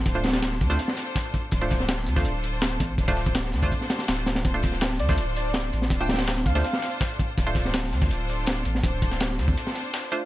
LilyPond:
<<
  \new Staff \with { instrumentName = "Digital synth lead" } { \time 4/4 \key d \minor \tempo 4 = 164 r1 | r1 | r1 | r4. d''8 r8 d''8 r4 |
r16 g''16 g''16 r8. f''4. r4 | r1 | r1 | }
  \new Staff \with { instrumentName = "String section" } { \time 4/4 \key d \minor <d' f' a' c''>4. <d' f' a' c''>2~ <d' f' a' c''>8 | <d' f' a' c''>4. <d' f' a' c''>2~ <d' f' a' c''>8 | <d' f' a' c''>4. <d' f' a' c''>2~ <d' f' a' c''>8 | <d' f' a' c''>4. <d' f' a' c''>2~ <d' f' a' c''>8 |
<d' f' a' c''>4. <d' f' a' c''>2~ <d' f' a' c''>8 | <d' f' a' c''>4. <d' f' a' c''>2~ <d' f' a' c''>8 | <d' f' a' c''>4. <d' f' a' c''>2~ <d' f' a' c''>8 | }
  \new Staff \with { instrumentName = "Synth stab" } { \time 4/4 \key d \minor r16 <a d' f' c''>8 r4 <a d' f' c''>16 r2 | r16 <a d' f' c''>4. <a d' f' c''>8 r4. r16 | r16 <a d' f' c''>8 r4 <a d' f' c''>16 r2 | r16 <a d' f' c''>4. <a d' f' c''>8 r4. r16 |
r16 <a d' f' c''>8 r4 <a d' f' c''>16 r2 | r16 <a d' f' c''>4. r2 r16 | r2. r8 <a d' f' c''>16 r16 | }
  \new Staff \with { instrumentName = "Sub bass" } { \clef bass \time 4/4 \key d \minor d,,4. d,8 r2 | d,,4. d,8 d,,4. a,,8 | d,,4. d,8 r4 d,,4 | d,,4. d,8 d,,4. a,,8 |
d,,4. d,8 r2 | d,,4. d,8 d,,4. a,,8 | d,,4. d,8 r2 | }
  \new DrumStaff \with { instrumentName = "Drums" } \drummode { \time 4/4 <hh bd>8 <hh sn>32 <hh sn>32 <hh sn>16 <hh sn>16 <hh sn>16 <hh bd>16 <hh sn>16 hh16 sn16 <hh sn>16 hh16 <hh bd sn>8 <hh bd>8 | <hh bd>16 hh16 <hh bd sn>16 sn16 <hh sn>16 sn16 hh16 <bd sn>16 hh8 hh8 <hh sn>16 hh16 <hh bd>8 | <hh bd>16 <hh bd>16 <hh sn>16 <hh bd>16 <hh sn>16 <hh sn>16 <hh sn>16 <hh bd>16 <hh bd>16 sn16 <hh sn>16 <hh sn>16 <hh sn>8 <hh sn>16 <hh sn>16 | <hh bd>16 hh16 <hh bd sn>16 sn16 <hh sn>16 sn16 hh16 <bd sn>16 hh8 hh8 <hh sn>16 hh16 hh16 sn16 |
<hh bd>8 <hh sn>32 <hh sn>32 <hh sn>16 <hh sn>16 <hh sn>16 <hh bd>16 <hh sn>16 hh16 sn16 <hh sn>16 hh16 <hh bd sn>8 <hh bd>8 | <hh bd>16 hh16 <hh bd sn>16 sn16 <hh sn>16 sn16 hh16 <bd sn>16 hh8 hh8 <hh sn>16 hh16 hh16 sn16 | <hh bd>8 <hh bd>16 sn16 <hh sn>16 <hh sn>16 <hh sn>16 <hh bd>16 hh16 <hh sn>16 <hh sn>8 <hh sn>16 sn16 hh8 | }
>>